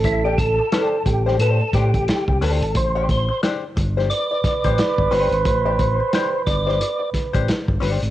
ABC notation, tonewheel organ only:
X:1
M:4/4
L:1/16
Q:"Swing 16ths" 1/4=89
K:Am
V:1 name="Tonewheel organ"
E G A4 G2 A2 G4 A2 | c2 c2 z4 d6 c2- | c6 d4 z6 |]